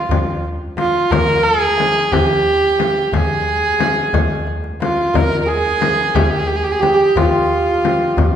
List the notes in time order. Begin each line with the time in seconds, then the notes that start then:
Already playing: F4
0.09 tombak dum, frame drum
0.77 F4, tombak tek, frame drum
1.11 A#4, tombak dum, frame drum
1.44 G#4
1.78 tombak tek, frame drum
2.12 G4, tombak dum, frame drum
2.79 tombak tek, frame drum
3.12 G#4, tombak dum, frame drum
3.46 tombak ka
3.79 tombak tek, frame drum
4.13 tombak dum, frame drum
4.30 tombak ka
4.47 tombak tek
4.64 tombak ka
4.80 F4, tombak tek, frame drum
4.98 tombak ka
5.14 A#4, tombak dum, frame drum
5.42 A#4
5.46 G#4
5.81 tombak tek, frame drum
6.15 G4, tombak dum, frame drum
6.23 G#4
6.30 G4
6.39 G#4
6.47 G4
6.56 G#4
6.64 G4
6.72 G#4
6.79 G4, tombak tek, frame drum
6.86 G#4
6.94 G4
7.15 F4, tombak dum, frame drum
7.85 frame drum
8.17 tombak dum, frame drum